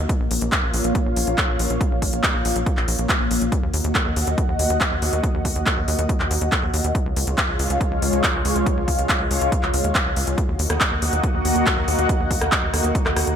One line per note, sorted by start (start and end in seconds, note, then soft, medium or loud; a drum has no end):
0.00 6.91 A#3 medium
0.09 3.49 F4 medium
0.09 3.49 C#5 medium
0.09 3.49 F5 medium
0.09 kick loud
0.09 closed hi-hat medium
0.20 0.28 A#1 medium
0.31 0.39 A#1 loud
0.31 open hi-hat loud
0.41 0.50 A#1 medium
0.41 closed hi-hat medium
0.52 kick loud
0.52 clap loud
0.52 closed hi-hat medium
0.63 0.71 A#1 medium
0.74 0.82 A#1 loud
0.74 open hi-hat loud
0.84 0.93 A#1 medium
0.84 closed hi-hat medium
0.95 kick loud
0.95 closed hi-hat medium
1.06 1.14 A#1 medium
1.16 1.25 A#1 loud
1.16 open hi-hat loud
1.27 1.35 A#1 medium
1.27 closed hi-hat medium
1.38 kick loud
1.38 clap loud
1.38 closed hi-hat medium
1.49 1.57 A#1 medium
1.59 1.68 A#1 loud
1.59 open hi-hat loud
1.70 1.78 A#1 medium
1.70 closed hi-hat medium
1.81 kick loud
1.81 closed hi-hat medium
1.91 2.00 A#1 medium
2.02 2.10 A#1 loud
2.02 kick medium
2.02 open hi-hat loud
2.13 2.21 A#1 medium
2.13 closed hi-hat medium
2.24 kick loud
2.24 clap loud
2.24 closed hi-hat medium
2.34 2.42 A#1 medium
2.45 2.53 A#1 loud
2.45 open hi-hat loud
2.56 2.64 A#1 medium
2.56 closed hi-hat medium
2.66 kick loud
2.66 closed hi-hat medium
2.77 2.85 A#1 medium
2.77 clap soft
2.88 2.96 A#1 loud
2.88 open hi-hat loud
2.99 3.07 A#1 medium
2.99 closed hi-hat medium
3.09 kick loud
3.09 clap loud
3.09 closed hi-hat medium
3.20 3.28 A#1 medium
3.31 3.39 A#1 loud
3.31 open hi-hat loud
3.41 3.50 A#1 medium
3.41 closed hi-hat medium
3.52 6.92 F#4 medium
3.52 6.92 D#5 medium
3.52 6.92 F#5 medium
3.52 kick loud
3.52 closed hi-hat medium
3.63 3.71 D#2 medium
3.74 3.82 D#2 loud
3.74 open hi-hat loud
3.84 3.93 D#2 medium
3.84 closed hi-hat medium
3.95 kick loud
3.95 clap loud
3.95 closed hi-hat medium
4.06 4.14 D#2 medium
4.16 4.25 D#2 loud
4.16 open hi-hat loud
4.27 4.35 D#2 medium
4.27 closed hi-hat medium
4.38 kick loud
4.38 closed hi-hat medium
4.49 4.57 D#2 medium
4.59 4.67 D#2 loud
4.59 open hi-hat loud
4.70 4.78 D#2 medium
4.70 closed hi-hat medium
4.81 kick loud
4.81 clap loud
4.81 closed hi-hat medium
4.91 5.00 D#2 medium
5.02 5.10 D#2 loud
5.02 open hi-hat loud
5.13 5.21 D#2 medium
5.13 closed hi-hat medium
5.24 kick loud
5.24 closed hi-hat medium
5.34 5.42 D#2 medium
5.45 5.53 D#2 loud
5.45 kick medium
5.45 open hi-hat loud
5.56 5.64 D#2 medium
5.56 closed hi-hat medium
5.66 kick loud
5.66 clap loud
5.66 closed hi-hat medium
5.77 5.85 D#2 medium
5.88 5.96 D#2 loud
5.88 open hi-hat loud
5.99 6.07 D#2 medium
5.99 closed hi-hat medium
6.09 kick loud
6.09 closed hi-hat medium
6.20 6.28 D#2 medium
6.20 clap soft
6.31 6.39 D#2 loud
6.31 open hi-hat loud
6.41 6.50 D#2 medium
6.41 closed hi-hat medium
6.52 kick loud
6.52 clap loud
6.52 closed hi-hat medium
6.63 6.71 D#2 medium
6.74 6.82 D#2 loud
6.74 open hi-hat loud
6.84 6.92 D#2 medium
6.84 closed hi-hat medium
6.95 10.34 G#3 medium
6.95 10.35 F4 medium
6.95 10.35 C#5 medium
6.95 10.35 F5 medium
6.95 kick loud
6.95 closed hi-hat medium
7.06 7.14 C#2 medium
7.16 7.25 C#2 loud
7.16 open hi-hat loud
7.27 7.35 C#2 medium
7.27 closed hi-hat medium
7.38 kick loud
7.38 clap loud
7.38 closed hi-hat medium
7.49 7.57 C#2 medium
7.59 7.67 C#2 loud
7.59 open hi-hat loud
7.70 7.78 C#2 medium
7.70 closed hi-hat medium
7.81 kick loud
7.81 closed hi-hat medium
7.91 8.00 C#2 medium
8.02 8.10 C#2 medium
8.02 open hi-hat loud
8.13 8.21 C#2 medium
8.13 closed hi-hat medium
8.24 kick loud
8.24 clap loud
8.24 closed hi-hat medium
8.34 8.42 C#2 medium
8.45 8.53 C#2 loud
8.45 open hi-hat loud
8.56 8.64 C#2 medium
8.56 closed hi-hat medium
8.66 kick loud
8.66 closed hi-hat medium
8.77 8.85 C#2 medium
8.88 8.96 C#2 loud
8.88 kick medium
8.88 open hi-hat loud
8.99 9.07 C#2 medium
8.99 closed hi-hat medium
9.09 kick loud
9.09 clap loud
9.09 closed hi-hat medium
9.20 9.28 C#2 medium
9.31 9.39 C#2 loud
9.31 open hi-hat loud
9.41 9.50 C#2 medium
9.41 closed hi-hat medium
9.52 kick loud
9.52 closed hi-hat medium
9.63 9.71 C#2 medium
9.63 clap soft
9.74 9.82 C#2 loud
9.74 open hi-hat loud
9.84 9.93 D#2 medium
9.84 closed hi-hat medium
9.95 kick loud
9.95 clap loud
9.95 closed hi-hat medium
10.06 10.14 C#2 medium
10.16 10.25 C#2 loud
10.16 open hi-hat loud
10.27 10.35 C#2 medium
10.27 closed hi-hat medium
10.38 13.36 A#3 medium
10.38 13.36 F#4 medium
10.38 13.36 D#5 medium
10.38 13.36 F#5 medium
10.38 kick loud
10.38 closed hi-hat medium
10.49 10.57 D#2 medium
10.59 10.67 D#2 loud
10.59 open hi-hat loud
10.70 10.78 D#2 medium
10.70 cross-stick medium
10.70 closed hi-hat medium
10.81 kick loud
10.81 clap loud
10.81 closed hi-hat medium
10.91 11.00 D#2 medium
11.02 11.10 D#2 medium
11.02 open hi-hat loud
11.13 11.21 D#2 medium
11.13 closed hi-hat medium
11.23 kick loud
11.23 closed hi-hat medium
11.34 11.43 D#2 medium
11.45 11.53 D#2 medium
11.45 open hi-hat loud
11.56 11.64 D#2 medium
11.56 closed hi-hat medium
11.66 kick loud
11.66 clap loud
11.66 closed hi-hat medium
11.77 11.85 D#2 medium
11.88 11.96 D#2 loud
11.88 open hi-hat loud
11.99 12.07 D#2 medium
11.99 closed hi-hat medium
12.09 kick loud
12.09 closed hi-hat medium
12.20 12.28 D#2 medium
12.31 12.39 D#2 loud
12.31 kick medium
12.31 open hi-hat loud
12.41 12.50 D#2 medium
12.41 cross-stick medium
12.41 closed hi-hat medium
12.52 kick loud
12.52 clap loud
12.52 closed hi-hat medium
12.63 12.71 D#2 medium
12.74 12.82 D#2 loud
12.74 cross-stick medium
12.74 open hi-hat loud
12.84 12.92 D#2 medium
12.84 closed hi-hat medium
12.95 kick loud
12.95 closed hi-hat medium
13.06 13.14 D#2 medium
13.06 cross-stick medium
13.06 clap soft
13.16 13.25 D#2 loud
13.16 cross-stick medium
13.16 open hi-hat loud
13.27 13.35 D#2 medium
13.27 closed hi-hat medium